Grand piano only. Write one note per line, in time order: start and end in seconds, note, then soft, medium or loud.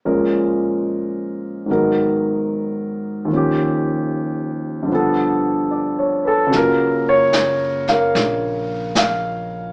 0.05 1.68 A#2 soft
0.05 1.68 F3 soft
0.05 1.68 G#3 soft
0.05 1.69 C#4 soft
0.05 1.68 A#4 soft
1.66 3.28 G#2 soft
1.66 3.26 D#3 soft
1.66 3.29 F#3 soft
1.71 3.30 B3 soft
1.71 3.30 A#4 medium
3.25 4.88 D#2 soft
3.25 4.89 D#3 soft
3.30 4.87 F3 soft
3.30 4.91 C#4 soft
3.36 4.93 G4 soft
4.83 6.49 G2 soft
4.83 6.51 D3 soft
4.89 6.52 F3 soft
4.89 6.54 B3 soft
4.94 6.26 A4 medium
5.71 6.23 D5 soft
5.99 6.41 C#5 soft
6.25 6.52 A4 medium
6.25 6.68 B4 soft
6.47 9.72 C#3 soft
6.47 9.72 F#3 soft
6.55 9.72 A#3 soft
6.55 9.72 F4 soft
6.55 7.06 A#4 medium
7.09 7.92 C#5 medium
7.89 9.48 A#4 medium
7.89 8.92 F5 medium
8.98 9.72 F5 medium